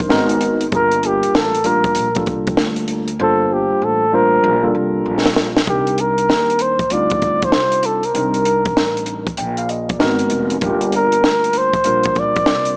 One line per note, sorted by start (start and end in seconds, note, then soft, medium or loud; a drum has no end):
0.00 0.10 C4 medium
0.00 0.10 D4 medium
0.00 kick medium
0.09 0.69 G#1 medium
0.09 0.65 G#3 loud
0.09 0.65 B3 medium
0.09 0.66 D#4 medium
0.09 0.66 F#4 medium
0.09 0.66 A#4 loud
0.09 snare loud
0.29 closed hi-hat medium
0.41 closed hi-hat medium
0.61 closed hi-hat medium
0.72 1.21 G1 loud
0.72 1.55 G3 medium
0.72 1.56 A#3 medium
0.72 1.56 D4 medium
0.72 1.56 F4 medium
0.72 0.81 G#4 medium
0.72 1.08 A#4 loud
0.72 kick loud
0.72 closed hi-hat medium
0.80 1.59 A#4 medium
0.92 closed hi-hat medium
1.03 1.38 G4 loud
1.03 closed hi-hat medium
1.23 muted upright bass stroke medium
1.23 closed hi-hat medium
1.34 1.93 A1 medium
1.34 1.69 A4 medium
1.34 snare loud
1.55 closed hi-hat medium
1.64 2.07 G3 medium
1.64 2.07 A#3 medium
1.64 2.08 D4 medium
1.64 2.08 F4 medium
1.64 2.08 A#4 medium
1.64 2.28 A#4 medium
1.64 closed hi-hat medium
1.84 kick medium
1.84 closed hi-hat medium
1.95 2.25 A#1 loud
1.95 closed hi-hat medium
2.15 3.08 G3 medium
2.15 3.09 A#3 medium
2.15 3.09 D4 medium
2.15 3.09 F4 medium
2.15 3.10 A4 medium
2.15 kick loud
2.15 closed hi-hat medium
2.26 2.56 C2 medium
2.26 kick medium
2.26 closed hi-hat medium
2.47 kick medium
2.47 closed hi-hat medium
2.57 3.16 D2 medium
2.57 snare loud
2.76 closed hi-hat medium
2.88 closed hi-hat medium
3.08 closed hi-hat medium
3.19 3.68 G1 loud
3.19 4.03 G3 medium
3.19 4.03 A#3 medium
3.19 4.03 D4 medium
3.19 4.04 F4 medium
3.19 3.55 A4 loud
3.19 4.04 C5 medium
3.53 3.86 G4 medium
3.71 muted upright bass stroke soft
3.82 4.40 A1 medium
3.82 4.16 A4 loud
4.12 4.55 G3 medium
4.12 4.55 A#3 medium
4.12 4.55 D4 medium
4.12 4.55 F4 medium
4.12 4.75 A#4 loud
4.12 4.56 C5 medium
4.44 4.73 A#1 loud
4.62 5.56 G3 medium
4.62 5.56 A#3 medium
4.62 5.56 D4 medium
4.62 5.57 F4 medium
4.62 5.57 A4 medium
4.75 5.04 C2 medium
5.05 5.64 A#1 loud
5.26 snare medium
5.36 snare loud
5.57 snare loud
5.67 6.26 C2 loud
5.67 6.77 G3 medium
5.67 6.77 C4 medium
5.67 6.78 D4 medium
5.67 6.78 D#4 medium
5.67 6.02 G4 medium
5.67 6.78 A#4 medium
5.67 kick medium
5.67 closed hi-hat medium
5.87 closed hi-hat medium
5.98 6.63 A#4 medium
5.98 closed hi-hat medium
6.18 closed hi-hat medium
6.29 6.88 D#2 medium
6.29 snare loud
6.50 closed hi-hat medium
6.59 6.94 C5 medium
6.59 closed hi-hat medium
6.79 kick medium
6.79 closed hi-hat soft
6.90 7.50 D2 medium
6.90 8.01 G3 medium
6.90 8.01 C4 medium
6.90 8.01 D4 medium
6.90 8.02 D#4 medium
6.90 8.02 F4 medium
6.90 7.46 D5 loud
6.90 closed hi-hat medium
7.10 kick medium
7.10 closed hi-hat medium
7.22 kick medium
7.22 closed hi-hat medium
7.42 7.87 C5 loud
7.42 kick medium
7.42 closed hi-hat soft
7.52 8.12 C2 medium
7.52 snare loud
7.72 closed hi-hat medium
7.83 8.07 A4 medium
7.83 closed hi-hat medium
8.03 9.28 A#4 medium
8.03 closed hi-hat medium
8.14 8.73 C2 loud
8.14 9.24 G3 medium
8.14 9.25 C4 medium
8.14 9.25 D4 medium
8.14 9.25 D#4 medium
8.14 9.26 A#4 medium
8.14 closed hi-hat medium
8.34 closed hi-hat medium
8.45 closed hi-hat medium
8.65 kick loud
8.65 closed hi-hat medium
8.76 9.35 A1 medium
8.76 snare loud
8.97 closed hi-hat medium
9.06 closed hi-hat medium
9.27 kick medium
9.27 closed hi-hat soft
9.37 9.97 A#1 loud
9.37 9.57 G5 medium
9.37 closed hi-hat medium
9.57 9.69 F5 medium
9.57 closed hi-hat soft
9.69 9.88 D#5 medium
9.69 closed hi-hat medium
9.89 10.18 D5 medium
9.89 kick medium
9.89 closed hi-hat medium
9.99 10.30 G#1 loud
9.99 10.55 G#3 medium
9.99 10.55 B3 medium
9.99 10.56 D#4 medium
9.99 10.56 F#4 medium
9.99 10.56 A#4 loud
9.99 snare loud
10.19 closed hi-hat medium
10.30 10.60 F1 medium
10.30 closed hi-hat medium
10.50 closed hi-hat medium
10.60 11.21 G1 loud
10.60 11.71 G3 medium
10.60 11.72 A#3 medium
10.60 11.72 D4 medium
10.60 11.72 F4 medium
10.60 11.72 A#4 medium
10.60 kick medium
10.60 closed hi-hat medium
10.65 10.92 G4 medium
10.81 closed hi-hat medium
10.92 11.59 A#4 loud
10.92 closed hi-hat medium
11.12 closed hi-hat medium
11.24 11.82 D2 medium
11.24 snare medium
11.44 closed hi-hat medium
11.53 closed hi-hat medium
11.57 12.21 C5 loud
11.73 kick medium
11.73 closed hi-hat soft
11.84 12.44 A#1 medium
11.84 12.77 G3 medium
11.84 12.77 A#3 medium
11.84 12.77 D4 medium
11.84 12.77 F4 medium
11.84 12.77 A#4 medium
11.84 closed hi-hat medium
12.03 kick medium
12.03 closed hi-hat medium
12.15 12.77 D5 loud
12.15 kick medium
12.15 closed hi-hat soft
12.36 kick medium
12.36 closed hi-hat soft
12.46 12.77 C2 medium
12.46 snare loud
12.65 closed hi-hat medium